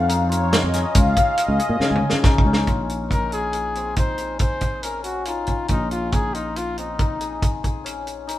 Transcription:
Already playing: fretless electric bass F2, hammered dulcimer C#4 F4
0.09 hammered dulcimer D#4, closed hi-hat
0.29 hammered dulcimer F4, analog synth pad C#5, closed hi-hat
0.53 analog synth pad D#5, snare, closed hi-hat
0.63 fretless electric bass F2
0.73 hammered dulcimer C#4, snare, closed hi-hat
0.95 fretless electric bass C#2, hammered dulcimer F4, analog synth pad F5, kick, closed hi-hat
1.17 hammered dulcimer G#4, kick, closed hi-hat
1.37 analog synth pad D#5, closed hi-hat
1.48 fretless electric bass C#2
1.59 hammered dulcimer G#4, closed hi-hat
1.69 fretless electric bass A#2
1.80 fretless electric bass C#3, hammered dulcimer C#4, analog synth pad G#5, snare
1.91 fretless electric bass C#2
1.96 high tom
2.10 fretless electric bass C#3, snare
2.24 hammered dulcimer D#4, kick, snare
2.38 kick
2.45 fretless electric bass C#2, hammered dulcimer C#4
2.53 snare
2.67 fretless electric bass A#1, hammered dulcimer F4, kick, closed hi-hat
2.89 closed hi-hat
3.11 hammered dulcimer D#4, trumpet A#4, kick, closed hi-hat
3.32 hammered dulcimer F4, trumpet G#4, closed hi-hat
3.53 closed hi-hat
3.75 hammered dulcimer C4, closed hi-hat
3.96 hammered dulcimer D#4, trumpet C5, kick, closed hi-hat
4.18 hammered dulcimer G#4, closed hi-hat
4.39 trumpet C5, kick, closed hi-hat
4.61 hammered dulcimer G#4, kick, closed hi-hat
4.83 hammered dulcimer C#4, trumpet A#4, closed hi-hat
5.04 trumpet F#4, closed hi-hat
5.25 hammered dulcimer D#4, trumpet F4, closed hi-hat
5.47 hammered dulcimer C#4, kick, closed hi-hat
5.68 fretless electric bass A#1, trumpet D#4, hammered dulcimer F4, kick, closed hi-hat
5.91 trumpet F4, closed hi-hat
6.12 hammered dulcimer D#4, trumpet G#4, kick, closed hi-hat
6.34 trumpet D#4, hammered dulcimer F4, closed hi-hat
6.56 trumpet F4, closed hi-hat
6.77 hammered dulcimer C4, trumpet D#4, closed hi-hat
6.99 hammered dulcimer D#4, kick, closed hi-hat
7.20 hammered dulcimer G#4, closed hi-hat
7.42 kick, closed hi-hat
7.63 hammered dulcimer G#4, kick, closed hi-hat
7.84 hammered dulcimer C#4, closed hi-hat
8.07 closed hi-hat
8.27 hammered dulcimer D#4, closed hi-hat

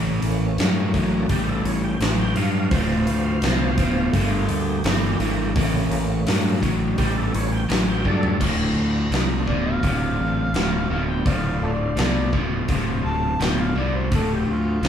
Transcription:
Already playing: fingered electric bass A1, overdriven electric guitar A2 E3
0.22 fingered electric bass A1, tonewheel organ A3 A#3 C#4, open hi-hat
0.58 fingered electric bass G2, overdriven electric guitar A2 F#3, snare, open hi-hat
0.94 fingered electric bass A1, overdriven electric guitar A2 F#3, kick, open hi-hat
1.26 fingered electric bass A1, overdriven electric guitar A2 G3, tonewheel organ F#4 G4, kick, open hi-hat
1.49 tonewheel organ A4
1.64 fingered electric bass A1, tonewheel organ C#5, open hi-hat
1.84 tonewheel organ G5
2.00 fingered electric bass A1, overdriven electric guitar A2 F#3, snare, open hi-hat
2.19 tonewheel organ G5
2.35 fingered electric bass G2, overdriven electric guitar A2 F#3, tonewheel organ F5, open hi-hat
2.70 fingered electric bass D1, overdriven electric guitar D2 A2, tonewheel organ E3 F3 C5, kick, open hi-hat
3.07 fingered electric bass D2, open hi-hat
3.42 fingered electric bass C2, overdriven electric guitar D2 B2, snare, open hi-hat
3.78 fingered electric bass D1, overdriven electric guitar D2 B2, kick, open hi-hat
4.10 fingered electric bass G1, overdriven electric guitar G2, tonewheel organ A3 A#3 G4, kick, open hi-hat
4.14 overdriven electric guitar D3
4.49 fingered electric bass D2, open hi-hat
4.84 fingered electric bass G1, overdriven electric guitar G2 E3, snare, open hi-hat
5.19 fingered electric bass G#1, overdriven electric guitar G2 E3, open hi-hat
5.54 fingered electric bass A1, overdriven electric guitar A2 E3, tonewheel organ A3 A#3 C#4, kick, open hi-hat
5.90 fingered electric bass A1, open hi-hat
6.27 fingered electric bass G2, overdriven electric guitar A2 F#3, snare, open hi-hat
6.62 fingered electric bass A1, overdriven electric guitar A2 F#3, kick, open hi-hat
6.94 tonewheel organ F#4, open hi-hat
6.98 fingered electric bass A1, overdriven electric guitar A2 G3, tonewheel organ G4, kick
7.17 tonewheel organ A4
7.35 fingered electric bass A1, tonewheel organ C#5, open hi-hat
7.52 tonewheel organ G5
7.69 fingered electric bass A1, overdriven electric guitar A2 F#3, snare, open hi-hat
7.89 tonewheel organ G5
8.04 fingered electric bass G2, overdriven electric guitar A2 F#3, tonewheel organ A4 D5, kick
8.23 floor tom
8.40 fingered electric bass D1, overdriven electric guitar D2 A2, tonewheel organ F4 F#4 A#4 C#5, kick, crash
8.64 tonewheel organ D4 F4 A4 C5
8.75 fingered electric bass D2
9.11 fingered electric bass C2, overdriven electric guitar D2 B2, snare, open hi-hat
9.47 fingered electric bass D1, overdriven electric guitar D2 B2, harmonica D5, kick
9.65 harmonica F5
9.83 fingered electric bass D1, overdriven electric guitar D2 C3, kick, open hi-hat
10.19 fingered electric bass A1
10.54 fingered electric bass D1, overdriven electric guitar D2 B2, snare, open hi-hat
10.90 fingered electric bass D1, overdriven electric guitar D2 B2
11.09 harmonica G5
11.25 fingered electric bass D1, overdriven electric guitar D2 A2, tonewheel organ F4 A4 C5 F5, harmonica C5 D5 F5, kick, open hi-hat
11.61 fingered electric bass D1, harmonica F4 A4 D5
11.96 fingered electric bass C2, overdriven electric guitar D2 B2, harmonica F4 A4 D5, snare, open hi-hat
12.33 fingered electric bass D1, overdriven electric guitar D2 B2, kick
12.68 fingered electric bass D1, overdriven electric guitar D2 C3, kick, open hi-hat
13.04 fingered electric bass D1, harmonica A5
13.40 fingered electric bass D1, overdriven electric guitar D2 B2, harmonica G5, snare, open hi-hat
13.60 harmonica F5
13.76 fingered electric bass C2, overdriven electric guitar D2 B2, harmonica D5
13.96 harmonica C5
14.10 fingered electric bass D1, overdriven electric guitar D2 A2, tonewheel organ A#4 C#5 F5 F#5, kick, open hi-hat
14.15 harmonica A4
14.33 harmonica G4, tonewheel organ A4 C5 E5 F5
14.46 fingered electric bass D2
14.52 harmonica F4
14.81 fingered electric bass C2, overdriven electric guitar D2 B2, snare, open hi-hat

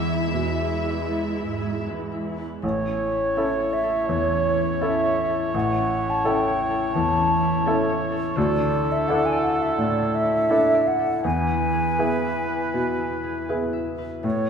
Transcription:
Already playing: cello section E2, grand piano E2, harp E3 E4, viola section G#3 E4, violin section E5
0.07 harp G#4
0.33 cello section E2, grand piano B2, harp B4
0.59 harp E5
0.84 harp B4
1.10 harp B3
1.35 harp E4
1.48 cello section G#2
1.60 harp G#4
1.86 cello section E2, harp B4
2.12 harp E5
2.38 harp B4
2.62 grand piano A1, harp A2, clarinet E4, flute C#5, cor anglais C#5
2.87 harp C#4
3.12 harp E4
3.36 grand piano C#4 E4 A4, harp A4
3.59 harp C#5
3.73 flute E5
3.83 harp A4
4.08 grand piano E2, harp E3, flute C#5
4.32 harp C#4
4.57 harp E4
4.81 grand piano C#4 E4 A4, harp A4, flute E5
5.06 harp C#5
5.30 harp A4
5.54 grand piano A1, harp A2, flute F#5
5.77 harp C#4
6.01 harp E4
6.10 flute A5
6.25 grand piano C#4 E4 A4, harp A4, flute G5
6.48 harp C#5
6.70 harp A4
6.94 grand piano E2, harp E3, flute A5
7.18 harp C#4
7.42 harp E4
7.66 grand piano C#4 E4 A4, harp A4
7.89 harp C#5
8.12 harp A4
8.35 grand piano D2, harp D3, clarinet E4, cor anglais A4, flute D5
8.60 harp D4
8.84 harp E4
8.92 flute E5
9.08 grand piano D4 E4 A4, harp A4, flute F#5
9.26 flute G#5
9.32 harp D5
9.42 flute F#5
9.55 harp A4
9.62 flute E5
9.78 grand piano A2, harp A3, flute D5
10.02 harp D4
10.15 flute E5
10.25 harp E4
10.50 grand piano D4 E4 A4, harp A4
10.74 harp D5
10.88 flute F#5
10.99 harp A4
11.23 grand piano E2, harp E3, cor anglais B4, flute G#5
11.48 harp E4
11.73 harp G#4
11.98 grand piano B3 E4 G#4, harp B4
12.24 harp E5
12.48 harp B4
12.74 grand piano B2, harp B3
12.99 harp E4
13.24 harp G#4
13.49 grand piano B3 E4 G#4, harp B4
13.73 harp E5
13.98 harp B4
14.23 harp A2, grand piano A2, clarinet E4, cor anglais C#5, flute C#5

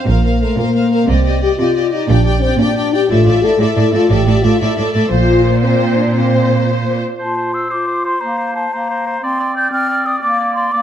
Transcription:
0.07 double bass section A#1, cello section A#2, french horn section A#3, viola section A#4, violin section C5 F5
0.24 viola section A#4, violin section C5 F5
0.41 french horn section A3, viola section A#4, violin section C5 F5
0.57 cello section A#2, french horn section A#3, viola section A#4, violin section C5 F5
0.75 viola section A#4, violin section C5 F5
0.92 viola section A#4, violin section C5 F5
1.08 double bass section C2, cello section C3, french horn section C4, viola section G4, violin section D5 D#5
1.25 viola section G4, violin section D5 D#5
1.42 viola section G4, french horn section G4, violin section D5 D#5
1.58 cello section C3, french horn section F4, viola section G4, violin section D5 D#5
1.76 viola section G4, violin section D5 D#5
1.92 french horn section D#4, viola section G4, violin section D5 D#5
2.08 double bass section A#1, cello section A#2, french horn section D4, viola section G4, violin section D5 G5
2.25 viola section G4, violin section D5 G5
2.41 french horn section C4, viola section G4, violin section D5 G5
2.59 cello section A#2, french horn section D4, viola section G4, violin section D5 G5
2.76 viola section G4, violin section D5 G5
2.93 viola section G4, french horn section G4, violin section D5 G5
3.09 double bass section A1, cello section A2, french horn section F4, viola section A4, violin section D5 E5
3.26 cello section A2, viola section A4, violin section D5 E5
3.43 cello section A2, french horn section A4, viola section A4, violin section D5 E5
3.59 cello section A2, french horn section E4, viola section A4, violin section D5 E5
3.76 cello section A2, viola section A4, violin section D5 E5
3.93 cello section A2, french horn section F4, viola section A4, violin section D5 E5
4.10 double bass section A1, cello section A2, french horn section G4, viola section A4, violin section D5 E5
4.26 cello section A2, viola section A4, violin section D5 E5
4.42 cello section A2, french horn section F4, viola section A4, violin section D5 E5
4.60 cello section A2, french horn section E4, viola section A4, violin section D5 E5
4.77 cello section A2, viola section A4, violin section D5 E5
4.93 cello section A2, viola section A4, violin section D5 E5
5.09 double bass section A#1, cello section A#2, french horn section F4, violin section C5, viola section C5
5.44 french horn section A#3
5.62 french horn section C4, violin section C5, viola section C5
5.96 french horn section D4
6.13 french horn section C4, violin section C5, viola section C5
7.19 clarinet F4, oboe C5, flute A5
7.37 oboe C5
7.53 oboe C5, flute E6
7.70 clarinet F4, oboe C5, flute D6
7.87 oboe C5
8.04 oboe C5, flute C6
8.21 clarinet A#3, oboe C5, flute A#5
8.38 oboe C5
8.55 oboe C5, flute A5
8.71 clarinet A#3, oboe C5, flute A#5
8.90 oboe C5
9.07 oboe C5
9.22 clarinet C4, oboe D5, flute C6
9.40 oboe D5
9.56 oboe D5, flute G6
9.71 clarinet C4, oboe D5, flute F6
9.89 oboe D5
10.06 oboe D5, flute D#6
10.21 clarinet A#3, oboe D5, flute D6
10.40 oboe D5
10.55 oboe D5, flute C6
10.72 clarinet A#3, oboe D5, flute D6

